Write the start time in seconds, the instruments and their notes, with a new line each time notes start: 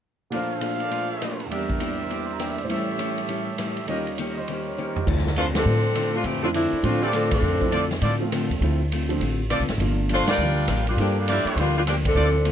0.30 grand piano A#2 F3 D4 A4, hollow-body jazz guitar A#2 A3 D4 F4, trumpet section A4 A#4 D5 F5, ride
0.35 grand piano C5
0.61 hollow-body jazz guitar A#2 A3 D4 F4, hi-hat pedal, ride
0.80 trumpet section A#4 C5 D5, ride
0.91 hollow-body jazz guitar A#2 A3 D4 F4, ride
1.21 hollow-body jazz guitar A#2 A3 D4 F4, cross-stick, hi-hat pedal, ride
1.40 ride
1.46 grand piano E2 E3
1.50 hollow-body jazz guitar E3 A#3 D4 G4, grand piano G3 D4, trumpet section G4 A#4 D5 E5, ride
1.57 grand piano A#4
1.70 kick
1.80 hollow-body jazz guitar E3 A#3 D4 G4, hi-hat pedal, ride
1.99 trumpet section A#4 C5 D5
2.10 hollow-body jazz guitar E3 A#3 D4 G4, ride
2.26 grand piano C6
2.33 grand piano A#5
2.39 hollow-body jazz guitar E3 A#3 D4 G4, grand piano G5, cross-stick, hi-hat pedal, ride
2.48 grand piano E5
2.56 grand piano D5, ride
2.64 grand piano A2 E3 C5
2.69 hollow-body jazz guitar A2 G3 C#4 E4, grand piano G3 C#4, trumpet section G4 A4 C#5 E5, ride
2.75 grand piano A4
2.98 hollow-body jazz guitar A2 G3 C#4 E4, hi-hat pedal, ride
3.18 ride
3.28 hollow-body jazz guitar A2 G3 C#4 E4, ride
3.58 hollow-body jazz guitar A2 G3 C#4 E4, cross-stick, hi-hat pedal, ride
3.77 ride
3.86 grand piano D#2 D#3 G3 C#4, hollow-body jazz guitar D#3 A#3 C#4, trumpet section G4 A#4 C#5 D#5, ride
3.91 grand piano F4, hollow-body jazz guitar G4
4.07 ride
4.18 hollow-body jazz guitar D#3 A#3 C#4 G4, hi-hat pedal, ride
4.37 grand piano D#3 C5, trumpet section C5 D#5
4.48 hollow-body jazz guitar D#3 A#3 C#4 G4, ride
4.68 grand piano C#5
4.77 hollow-body jazz guitar D#3 A#3 C#4 G4, grand piano C5, hi-hat pedal
4.87 grand piano A#4
4.96 grand piano G4, floor tom
5.06 upright bass D2, hollow-body jazz guitar D3 A3 C4 F4, grand piano F3 A3 C4 E4, kick, crash
5.18 snare
5.27 snare
5.36 hollow-body jazz guitar D3 A3 C4 F4, saxophone section A3 D4 F4 C5, hi-hat pedal, ride
5.54 grand piano F3 A3 C4 G4, saxophone section F3 C4 D4 A4, snare, ride
5.66 upright bass A2, hollow-body jazz guitar D3 A3 C4 F4
5.95 hollow-body jazz guitar D3 A3 C4 F4, cross-stick, hi-hat pedal, ride
6.15 saxophone section A3 C4 D4 F4
6.24 upright bass F2, hollow-body jazz guitar D3 A3 C4 F4, saxophone section E3 A3 C4 G4, ride
6.43 grand piano F3 A3 C4 E4, saxophone section A3 C4 D4 F4
6.54 hollow-body jazz guitar D3 A3 C4 F4, saxophone section A3 C4 D4 E4, hi-hat pedal, ride
6.72 muted upright bass stroke
6.82 upright bass A2, hollow-body jazz guitar D3 A3 C4 F4, grand piano F3 A3 C4 D4, saxophone section A3 C4 D4 F4, ride
7.02 saxophone section E3 A3 C4 G4, trumpet section F4 A4 C5 D5
7.13 hollow-body jazz guitar D3 A3 C4 F4, saxophone section F3 C4 D4 A4, cross-stick, hi-hat pedal, ride
7.31 saxophone section F3 C4 D4 A4, kick, ride
7.42 upright bass F2, hollow-body jazz guitar D3 A3 C4 F4
7.61 grand piano F3 A3 C4 E4, kick
7.72 hollow-body jazz guitar D3 A3 C4 F4, trumpet section F4 A4 C5 D5, hi-hat pedal, ride
7.91 snare, ride
8.02 upright bass A2, hollow-body jazz guitar D3 A3 C4 F4, trumpet section F4 A4 C5 D5, ride
8.20 grand piano F3 A3 C4 F4
8.32 hollow-body jazz guitar D3 A3 C4 F4, cross-stick, hi-hat pedal, ride
8.50 upright bass D#2, ride
8.61 upright bass D2, hollow-body jazz guitar D3 A3 C4, grand piano F3 A3 C4 E4, ride
8.65 hollow-body jazz guitar F4
8.92 hollow-body jazz guitar D3 A3 C4 F4, hi-hat pedal, ride
9.09 grand piano F3 A3 C4 D4, ride
9.20 upright bass A1, hollow-body jazz guitar D3 A3 C4 F4, ride
9.50 hollow-body jazz guitar D3 A3 C4 F4, trumpet section F4 A4 C5 D5, cross-stick, hi-hat pedal, ride
9.59 upright bass C2
9.69 upright bass A1, snare, ride
9.78 upright bass G1, hollow-body jazz guitar G2 F3 A#3 D4, grand piano A3 A#3 D4 F4, ride
10.09 hollow-body jazz guitar G2 F3 A#3 D4, saxophone section D4, hi-hat pedal, ride
10.13 saxophone section A3 F4 C5
10.27 saxophone section G3 D4 F4 A#4, trumpet section F4 G4 A#4 D5, muted upright bass stroke, snare, ride
10.38 upright bass D2, hollow-body jazz guitar G2 F3 A#3
10.42 hollow-body jazz guitar D4
10.68 upright bass A1, hollow-body jazz guitar G2 F3 A#3, cross-stick, hi-hat pedal, ride
10.72 hollow-body jazz guitar D4
10.87 saxophone section G3 A#3 D4 F4, ride
10.97 upright bass G2, hollow-body jazz guitar G2, saxophone section F3 A#3 D4 G4, grand piano A#3 D4 F4 A4, ride
11.01 hollow-body jazz guitar F3 A#3 D4
11.18 saxophone section G3 A#3 D4 F4
11.28 hollow-body jazz guitar G2 F3 A#3 D4, saxophone section G3 A#3 D4 E4, trumpet section F4 G4 A#4 D5, hi-hat pedal, ride
11.45 muted upright bass stroke, ride
11.56 upright bass D2, hollow-body jazz guitar G2 F3, saxophone section D4, ride
11.60 saxophone section G3 A#3 F4, hollow-body jazz guitar A#3 D4
11.78 saxophone section G3 A#3 D4 F4
11.87 hollow-body jazz guitar G2 F3 A#3 D4, saxophone section F3 A#3 D4 G4, cross-stick, hi-hat pedal, ride
12.05 saxophone section F3 C4 D4 A4, kick, ride
12.15 upright bass D2, hollow-body jazz guitar D3 A3 C4 F4, grand piano A3 C4 E4 F4, trumpet section F4 A4 C5 D5
12.45 hollow-body jazz guitar D3 A3 C4 F4, hi-hat pedal, ride